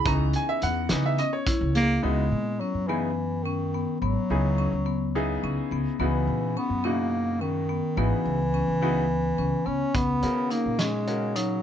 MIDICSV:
0, 0, Header, 1, 7, 480
1, 0, Start_track
1, 0, Tempo, 564972
1, 54, Time_signature, 7, 3, 24, 8
1, 9876, End_track
2, 0, Start_track
2, 0, Title_t, "Trombone"
2, 0, Program_c, 0, 57
2, 8220, Note_on_c, 0, 73, 72
2, 8466, Note_on_c, 0, 71, 75
2, 8478, Note_off_c, 0, 73, 0
2, 8940, Note_on_c, 0, 70, 66
2, 8953, Note_off_c, 0, 71, 0
2, 9170, Note_on_c, 0, 68, 76
2, 9182, Note_off_c, 0, 70, 0
2, 9657, Note_on_c, 0, 66, 66
2, 9670, Note_off_c, 0, 68, 0
2, 9876, Note_off_c, 0, 66, 0
2, 9876, End_track
3, 0, Start_track
3, 0, Title_t, "Grand piano"
3, 0, Program_c, 1, 0
3, 49, Note_on_c, 1, 52, 50
3, 54, Note_on_c, 1, 59, 46
3, 57, Note_on_c, 1, 63, 54
3, 59, Note_on_c, 1, 82, 88
3, 303, Note_off_c, 1, 82, 0
3, 304, Note_on_c, 1, 80, 89
3, 416, Note_on_c, 1, 76, 90
3, 422, Note_off_c, 1, 80, 0
3, 537, Note_on_c, 1, 78, 91
3, 538, Note_off_c, 1, 76, 0
3, 737, Note_off_c, 1, 52, 0
3, 739, Note_off_c, 1, 59, 0
3, 741, Note_off_c, 1, 63, 0
3, 769, Note_on_c, 1, 52, 48
3, 776, Note_on_c, 1, 63, 56
3, 778, Note_on_c, 1, 59, 41
3, 898, Note_on_c, 1, 76, 82
3, 906, Note_off_c, 1, 78, 0
3, 987, Note_off_c, 1, 52, 0
3, 991, Note_off_c, 1, 63, 0
3, 992, Note_off_c, 1, 59, 0
3, 1013, Note_on_c, 1, 75, 82
3, 1019, Note_off_c, 1, 76, 0
3, 1125, Note_off_c, 1, 75, 0
3, 1130, Note_on_c, 1, 73, 71
3, 1578, Note_off_c, 1, 73, 0
3, 1721, Note_on_c, 1, 49, 62
3, 1721, Note_on_c, 1, 59, 57
3, 1724, Note_on_c, 1, 63, 56
3, 1725, Note_on_c, 1, 64, 55
3, 1725, Note_on_c, 1, 66, 65
3, 1895, Note_off_c, 1, 49, 0
3, 1895, Note_off_c, 1, 59, 0
3, 1896, Note_off_c, 1, 63, 0
3, 1897, Note_off_c, 1, 64, 0
3, 1897, Note_off_c, 1, 66, 0
3, 2448, Note_on_c, 1, 49, 60
3, 2451, Note_on_c, 1, 63, 54
3, 2454, Note_on_c, 1, 59, 57
3, 2457, Note_on_c, 1, 64, 56
3, 2458, Note_on_c, 1, 68, 63
3, 2619, Note_off_c, 1, 49, 0
3, 2620, Note_off_c, 1, 63, 0
3, 2622, Note_off_c, 1, 59, 0
3, 2623, Note_off_c, 1, 64, 0
3, 2624, Note_off_c, 1, 68, 0
3, 3656, Note_on_c, 1, 49, 57
3, 3658, Note_on_c, 1, 59, 58
3, 3658, Note_on_c, 1, 63, 53
3, 3660, Note_on_c, 1, 64, 52
3, 3664, Note_on_c, 1, 68, 71
3, 3991, Note_off_c, 1, 49, 0
3, 3992, Note_off_c, 1, 59, 0
3, 3992, Note_off_c, 1, 63, 0
3, 3993, Note_off_c, 1, 64, 0
3, 3995, Note_off_c, 1, 68, 0
3, 4378, Note_on_c, 1, 59, 71
3, 4379, Note_on_c, 1, 49, 72
3, 4380, Note_on_c, 1, 63, 69
3, 4381, Note_on_c, 1, 68, 80
3, 4383, Note_on_c, 1, 64, 65
3, 5048, Note_off_c, 1, 59, 0
3, 5049, Note_off_c, 1, 49, 0
3, 5049, Note_off_c, 1, 63, 0
3, 5050, Note_off_c, 1, 68, 0
3, 5051, Note_off_c, 1, 64, 0
3, 5098, Note_on_c, 1, 59, 62
3, 5101, Note_on_c, 1, 49, 64
3, 5103, Note_on_c, 1, 64, 58
3, 5104, Note_on_c, 1, 63, 52
3, 5104, Note_on_c, 1, 66, 67
3, 5768, Note_off_c, 1, 59, 0
3, 5770, Note_off_c, 1, 49, 0
3, 5771, Note_off_c, 1, 63, 0
3, 5771, Note_off_c, 1, 64, 0
3, 5772, Note_off_c, 1, 66, 0
3, 5817, Note_on_c, 1, 47, 54
3, 5817, Note_on_c, 1, 49, 56
3, 5819, Note_on_c, 1, 63, 55
3, 5821, Note_on_c, 1, 64, 47
3, 5822, Note_on_c, 1, 66, 61
3, 6488, Note_off_c, 1, 47, 0
3, 6488, Note_off_c, 1, 49, 0
3, 6489, Note_off_c, 1, 63, 0
3, 6490, Note_off_c, 1, 64, 0
3, 6490, Note_off_c, 1, 66, 0
3, 6771, Note_on_c, 1, 49, 57
3, 6776, Note_on_c, 1, 59, 49
3, 6776, Note_on_c, 1, 64, 48
3, 6779, Note_on_c, 1, 63, 46
3, 6781, Note_on_c, 1, 66, 58
3, 7108, Note_off_c, 1, 49, 0
3, 7111, Note_off_c, 1, 59, 0
3, 7111, Note_off_c, 1, 64, 0
3, 7112, Note_off_c, 1, 63, 0
3, 7114, Note_off_c, 1, 66, 0
3, 7492, Note_on_c, 1, 49, 75
3, 7497, Note_on_c, 1, 59, 67
3, 7498, Note_on_c, 1, 63, 70
3, 7499, Note_on_c, 1, 64, 62
3, 7501, Note_on_c, 1, 66, 79
3, 7661, Note_off_c, 1, 49, 0
3, 7663, Note_off_c, 1, 59, 0
3, 7664, Note_off_c, 1, 63, 0
3, 7664, Note_off_c, 1, 64, 0
3, 7665, Note_off_c, 1, 66, 0
3, 8689, Note_on_c, 1, 61, 58
3, 8690, Note_on_c, 1, 49, 64
3, 8691, Note_on_c, 1, 66, 56
3, 8694, Note_on_c, 1, 70, 70
3, 9362, Note_off_c, 1, 61, 0
3, 9363, Note_off_c, 1, 49, 0
3, 9363, Note_off_c, 1, 66, 0
3, 9365, Note_off_c, 1, 70, 0
3, 9406, Note_on_c, 1, 49, 57
3, 9409, Note_on_c, 1, 61, 57
3, 9410, Note_on_c, 1, 66, 53
3, 9413, Note_on_c, 1, 70, 65
3, 9876, Note_off_c, 1, 49, 0
3, 9876, Note_off_c, 1, 61, 0
3, 9876, Note_off_c, 1, 66, 0
3, 9876, Note_off_c, 1, 70, 0
3, 9876, End_track
4, 0, Start_track
4, 0, Title_t, "Marimba"
4, 0, Program_c, 2, 12
4, 57, Note_on_c, 2, 61, 89
4, 321, Note_off_c, 2, 61, 0
4, 537, Note_on_c, 2, 59, 76
4, 801, Note_off_c, 2, 59, 0
4, 1011, Note_on_c, 2, 61, 74
4, 1144, Note_off_c, 2, 61, 0
4, 1248, Note_on_c, 2, 64, 81
4, 1382, Note_off_c, 2, 64, 0
4, 1490, Note_on_c, 2, 68, 80
4, 1624, Note_off_c, 2, 68, 0
4, 1731, Note_on_c, 2, 59, 75
4, 1997, Note_off_c, 2, 59, 0
4, 2215, Note_on_c, 2, 61, 68
4, 2347, Note_off_c, 2, 61, 0
4, 2458, Note_on_c, 2, 59, 76
4, 2722, Note_off_c, 2, 59, 0
4, 2936, Note_on_c, 2, 61, 74
4, 3068, Note_off_c, 2, 61, 0
4, 3180, Note_on_c, 2, 59, 67
4, 3311, Note_off_c, 2, 59, 0
4, 3418, Note_on_c, 2, 59, 74
4, 3682, Note_off_c, 2, 59, 0
4, 3895, Note_on_c, 2, 61, 70
4, 4028, Note_off_c, 2, 61, 0
4, 4129, Note_on_c, 2, 59, 74
4, 4395, Note_off_c, 2, 59, 0
4, 4619, Note_on_c, 2, 61, 70
4, 4750, Note_off_c, 2, 61, 0
4, 4861, Note_on_c, 2, 59, 70
4, 4991, Note_off_c, 2, 59, 0
4, 5095, Note_on_c, 2, 59, 85
4, 5360, Note_off_c, 2, 59, 0
4, 5580, Note_on_c, 2, 61, 74
4, 5711, Note_off_c, 2, 61, 0
4, 5812, Note_on_c, 2, 61, 76
4, 6077, Note_off_c, 2, 61, 0
4, 6298, Note_on_c, 2, 61, 72
4, 6430, Note_off_c, 2, 61, 0
4, 6535, Note_on_c, 2, 59, 68
4, 6667, Note_off_c, 2, 59, 0
4, 6774, Note_on_c, 2, 59, 80
4, 7039, Note_off_c, 2, 59, 0
4, 7255, Note_on_c, 2, 61, 70
4, 7387, Note_off_c, 2, 61, 0
4, 7498, Note_on_c, 2, 59, 72
4, 7762, Note_off_c, 2, 59, 0
4, 7972, Note_on_c, 2, 61, 74
4, 8105, Note_off_c, 2, 61, 0
4, 8208, Note_on_c, 2, 59, 69
4, 8342, Note_off_c, 2, 59, 0
4, 8452, Note_on_c, 2, 61, 82
4, 8717, Note_off_c, 2, 61, 0
4, 8925, Note_on_c, 2, 63, 72
4, 9060, Note_off_c, 2, 63, 0
4, 9166, Note_on_c, 2, 61, 74
4, 9433, Note_off_c, 2, 61, 0
4, 9650, Note_on_c, 2, 63, 72
4, 9783, Note_off_c, 2, 63, 0
4, 9876, End_track
5, 0, Start_track
5, 0, Title_t, "Bass clarinet"
5, 0, Program_c, 3, 71
5, 1494, Note_on_c, 3, 58, 111
5, 1729, Note_on_c, 3, 56, 92
5, 1742, Note_off_c, 3, 58, 0
5, 2206, Note_on_c, 3, 54, 74
5, 2218, Note_off_c, 3, 56, 0
5, 2445, Note_on_c, 3, 52, 78
5, 2458, Note_off_c, 3, 54, 0
5, 2917, Note_on_c, 3, 51, 74
5, 2930, Note_off_c, 3, 52, 0
5, 3396, Note_off_c, 3, 51, 0
5, 3401, Note_on_c, 3, 54, 81
5, 4814, Note_off_c, 3, 54, 0
5, 5096, Note_on_c, 3, 52, 79
5, 5588, Note_on_c, 3, 59, 77
5, 5601, Note_off_c, 3, 52, 0
5, 5819, Note_on_c, 3, 58, 85
5, 5832, Note_off_c, 3, 59, 0
5, 6296, Note_on_c, 3, 51, 73
5, 6309, Note_off_c, 3, 58, 0
5, 6788, Note_on_c, 3, 52, 89
5, 6800, Note_off_c, 3, 51, 0
5, 8213, Note_on_c, 3, 61, 89
5, 8226, Note_off_c, 3, 52, 0
5, 8455, Note_on_c, 3, 59, 91
5, 8468, Note_off_c, 3, 61, 0
5, 8927, Note_on_c, 3, 58, 76
5, 8939, Note_off_c, 3, 59, 0
5, 9176, Note_on_c, 3, 56, 83
5, 9188, Note_off_c, 3, 58, 0
5, 9648, Note_on_c, 3, 54, 68
5, 9661, Note_off_c, 3, 56, 0
5, 9876, Note_off_c, 3, 54, 0
5, 9876, End_track
6, 0, Start_track
6, 0, Title_t, "Upright bass"
6, 0, Program_c, 4, 32
6, 49, Note_on_c, 4, 37, 102
6, 276, Note_off_c, 4, 37, 0
6, 531, Note_on_c, 4, 40, 93
6, 757, Note_off_c, 4, 40, 0
6, 774, Note_on_c, 4, 49, 79
6, 999, Note_off_c, 4, 49, 0
6, 1368, Note_on_c, 4, 37, 91
6, 1708, Note_off_c, 4, 37, 0
6, 1730, Note_on_c, 4, 37, 85
6, 1957, Note_off_c, 4, 37, 0
6, 1970, Note_on_c, 4, 46, 82
6, 2197, Note_off_c, 4, 46, 0
6, 2329, Note_on_c, 4, 42, 73
6, 3257, Note_off_c, 4, 42, 0
6, 3412, Note_on_c, 4, 32, 94
6, 3526, Note_off_c, 4, 32, 0
6, 3654, Note_on_c, 4, 37, 86
6, 3992, Note_off_c, 4, 37, 0
6, 4016, Note_on_c, 4, 37, 74
6, 4581, Note_off_c, 4, 37, 0
6, 4615, Note_on_c, 4, 37, 81
6, 4728, Note_off_c, 4, 37, 0
6, 4853, Note_on_c, 4, 37, 81
6, 4966, Note_off_c, 4, 37, 0
6, 5091, Note_on_c, 4, 37, 86
6, 5318, Note_off_c, 4, 37, 0
6, 5330, Note_on_c, 4, 46, 82
6, 5557, Note_off_c, 4, 46, 0
6, 5689, Note_on_c, 4, 42, 73
6, 6618, Note_off_c, 4, 42, 0
6, 6772, Note_on_c, 4, 32, 100
6, 6886, Note_off_c, 4, 32, 0
6, 7012, Note_on_c, 4, 37, 91
6, 7351, Note_off_c, 4, 37, 0
6, 7376, Note_on_c, 4, 37, 74
6, 7941, Note_off_c, 4, 37, 0
6, 7971, Note_on_c, 4, 37, 84
6, 8085, Note_off_c, 4, 37, 0
6, 8211, Note_on_c, 4, 37, 76
6, 8325, Note_off_c, 4, 37, 0
6, 8449, Note_on_c, 4, 37, 82
6, 8676, Note_off_c, 4, 37, 0
6, 8695, Note_on_c, 4, 51, 79
6, 8919, Note_off_c, 4, 51, 0
6, 9056, Note_on_c, 4, 46, 71
6, 9876, Note_off_c, 4, 46, 0
6, 9876, End_track
7, 0, Start_track
7, 0, Title_t, "Drums"
7, 47, Note_on_c, 9, 36, 113
7, 47, Note_on_c, 9, 42, 77
7, 132, Note_off_c, 9, 36, 0
7, 132, Note_off_c, 9, 42, 0
7, 282, Note_on_c, 9, 42, 60
7, 367, Note_off_c, 9, 42, 0
7, 523, Note_on_c, 9, 42, 61
7, 608, Note_off_c, 9, 42, 0
7, 757, Note_on_c, 9, 38, 107
7, 757, Note_on_c, 9, 42, 82
7, 842, Note_off_c, 9, 38, 0
7, 842, Note_off_c, 9, 42, 0
7, 1004, Note_on_c, 9, 42, 58
7, 1089, Note_off_c, 9, 42, 0
7, 1243, Note_on_c, 9, 38, 36
7, 1243, Note_on_c, 9, 42, 89
7, 1245, Note_on_c, 9, 36, 99
7, 1328, Note_off_c, 9, 38, 0
7, 1328, Note_off_c, 9, 42, 0
7, 1330, Note_off_c, 9, 36, 0
7, 1486, Note_on_c, 9, 38, 33
7, 1486, Note_on_c, 9, 42, 58
7, 1571, Note_off_c, 9, 38, 0
7, 1571, Note_off_c, 9, 42, 0
7, 8447, Note_on_c, 9, 42, 71
7, 8450, Note_on_c, 9, 36, 97
7, 8532, Note_off_c, 9, 42, 0
7, 8535, Note_off_c, 9, 36, 0
7, 8687, Note_on_c, 9, 42, 57
7, 8772, Note_off_c, 9, 42, 0
7, 8928, Note_on_c, 9, 42, 59
7, 9013, Note_off_c, 9, 42, 0
7, 9166, Note_on_c, 9, 38, 96
7, 9166, Note_on_c, 9, 42, 80
7, 9251, Note_off_c, 9, 38, 0
7, 9251, Note_off_c, 9, 42, 0
7, 9408, Note_on_c, 9, 42, 50
7, 9493, Note_off_c, 9, 42, 0
7, 9650, Note_on_c, 9, 42, 85
7, 9735, Note_off_c, 9, 42, 0
7, 9876, End_track
0, 0, End_of_file